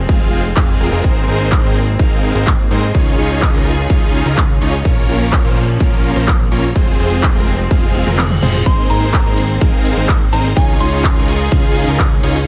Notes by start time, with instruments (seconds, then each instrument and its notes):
Already playing: string section F3 G#3 C4
0.09 analog synth bass F1, supersaw synth G#3 C4 F4 G#4 F5, kick, closed hi-hat
0.21 closed hi-hat
0.33 open hi-hat
0.45 closed hi-hat
0.56 analog synth bass F1, supersaw synth G#3 C4 F4 G#4 F5, kick, clap, closed hi-hat
0.69 closed hi-hat
0.80 analog synth bass F1, supersaw synth G#3 C4 F4 G#4 A#4, open hi-hat
0.92 analog synth bass F1, supersaw synth G#3 C4 F4 G#4 A#4, closed hi-hat
1.04 analog synth bass G#1, string section A#3, supersaw synth C4 D#4 G#4 A#4 C5, kick, closed hi-hat
1.16 closed hi-hat
1.28 analog synth bass G#1, supersaw synth C4 D#4 G#4 A#4 C5, open hi-hat
1.40 closed hi-hat
1.52 kick, clap, closed hi-hat
1.64 analog synth bass G#1, supersaw synth C4 D#4 G#4 A#4 C5, closed hi-hat
1.76 open hi-hat
1.88 closed hi-hat
1.99 analog synth bass G#1, supersaw synth C4 D#4 G#4 A#4 F5, kick, closed hi-hat
2.11 closed hi-hat
2.23 open hi-hat
2.35 analog synth bass G#1, supersaw synth C4 D#4 G#4 A#4 C5, closed hi-hat
2.47 kick, clap, closed hi-hat
2.59 closed hi-hat
2.71 analog synth bass G#2, supersaw synth C4 D#4 G#4 A#4 C5, open hi-hat
2.83 closed hi-hat
2.95 analog synth bass C#2, string section C#3 C#4 D#4 F4 G#4, supersaw synth C#4 D#4 F4 G#4 C#5, kick, closed hi-hat
3.07 closed hi-hat
3.18 analog synth bass C#2, supersaw synth C#4 D#4 F4 G#4 C#5, open hi-hat
3.30 closed hi-hat
3.42 kick, clap, closed hi-hat
3.54 analog synth bass C#2, supersaw synth C#4 D#4 F4 G#4 A#4, closed hi-hat
3.66 open hi-hat
3.78 closed hi-hat
3.90 analog synth bass C#2, supersaw synth C#4 D#4 F4 G#4 F5, kick, closed hi-hat
4.02 closed hi-hat
4.14 open hi-hat
4.26 analog synth bass C#2, supersaw synth C#4 D#4 F4 G#4 A#4, closed hi-hat
4.38 kick, clap, closed hi-hat
4.49 closed hi-hat
4.61 analog synth bass C#2, supersaw synth C#4 D#4 F4 G#4 C#5, open hi-hat
4.73 closed hi-hat
4.85 analog synth bass A#1, string section F3 A#3, supersaw synth A#3 C#4 F4 A#4 C#5, kick, closed hi-hat
4.97 closed hi-hat
5.09 analog synth bass A#1, supersaw synth A#3 C#4 F4 A#4 C#5, open hi-hat
5.21 closed hi-hat
5.33 kick, clap, closed hi-hat
5.45 analog synth bass A#1, supersaw synth A#3 C#4 F4 A#4 C5, closed hi-hat
5.57 open hi-hat
5.68 closed hi-hat
5.80 analog synth bass A#1, supersaw synth A#3 C#4 F4 A#4 F5, kick, closed hi-hat
5.92 closed hi-hat
6.04 open hi-hat
6.16 analog synth bass A#1, supersaw synth A#3 C#4 F4 A#4 C5, closed hi-hat
6.28 kick, clap, closed hi-hat
6.40 closed hi-hat
6.52 analog synth bass A#1, supersaw synth A#3 C#4 F4 A#4 C#5, open hi-hat
6.64 closed hi-hat
6.76 analog synth bass F1, string section F3 G#3 C4, supersaw synth G#3 C4 F4 G#4 C5, kick, closed hi-hat
6.88 closed hi-hat
6.99 analog synth bass F1, supersaw synth G#3 C4 F4 G#4 C5, open hi-hat
7.11 closed hi-hat
7.23 kick, clap, closed hi-hat
7.35 analog synth bass F1, supersaw synth G#3 C4 F4 G#4 A#4, closed hi-hat
7.47 open hi-hat
7.59 closed hi-hat
7.71 analog synth bass F1, supersaw synth G#3 C4 F4 G#4 F5, kick, closed hi-hat, high tom, reverse cymbal
7.83 closed hi-hat, high tom
7.95 open hi-hat, high tom
8.07 analog synth bass F1, supersaw synth G#3 C4 F4 G#4 A#4, closed hi-hat, mid tom
8.19 clap, closed hi-hat, mid tom
8.30 closed hi-hat, mid tom
8.42 analog synth bass F1, supersaw synth G#3 C4 F4 G#4 C5, mid tom, open hi-hat
8.54 closed hi-hat, mid tom
8.66 analog synth bass G#1, string section A#3 C4, supersaw synth C4 D#4 G#4 A#4 C5, synth bell C6, kick, closed hi-hat, ride
8.78 closed hi-hat
8.90 analog synth bass G#1, supersaw synth C4 D#4 G#4 A#4 C5, synth bell A#5, open hi-hat, ride
9.02 closed hi-hat
9.14 kick, clap, closed hi-hat, ride
9.26 analog synth bass G#1, supersaw synth C4 D#4 G#4 A#4 C5, closed hi-hat
9.38 open hi-hat, ride
9.50 closed hi-hat
9.61 analog synth bass G#1, supersaw synth C4 D#4 G#4 A#4 F5, kick, closed hi-hat, ride
9.73 closed hi-hat
9.85 open hi-hat, ride
9.97 analog synth bass G#1, supersaw synth C4 D#4 G#4 A#4 C5, closed hi-hat
10.09 kick, clap, closed hi-hat, ride
10.21 closed hi-hat
10.33 analog synth bass G#1, supersaw synth C4 D#4 G#4 A#4 C5, synth bell A#5, open hi-hat, ride
10.45 closed hi-hat
10.56 analog synth bass C#2, string section C#3 C#4 D#4 F4 G#4, supersaw synth C#4 D#4 F4 G#4 C#5, synth bell G#5, kick, closed hi-hat, ride
10.69 closed hi-hat
10.80 analog synth bass C#2, supersaw synth C#4 D#4 F4 G#4 C#5, synth bell C6, open hi-hat, ride
10.92 closed hi-hat
11.04 kick, clap, closed hi-hat, ride
11.16 analog synth bass C#2, supersaw synth C#4 D#4 F4 G#4 A#4, closed hi-hat
11.28 open hi-hat, ride
11.40 closed hi-hat
11.52 analog synth bass C#2, supersaw synth C#4 D#4 F4 G#4 F5, kick, closed hi-hat, ride
11.64 closed hi-hat
11.76 open hi-hat, ride
11.88 analog synth bass C#2, supersaw synth C#4 D#4 F4 G#4 A#4, closed hi-hat
11.99 kick, clap, closed hi-hat, ride
12.11 closed hi-hat
12.23 analog synth bass C#2, supersaw synth C#4 D#4 F4 G#4 C#5, open hi-hat, ride
12.35 closed hi-hat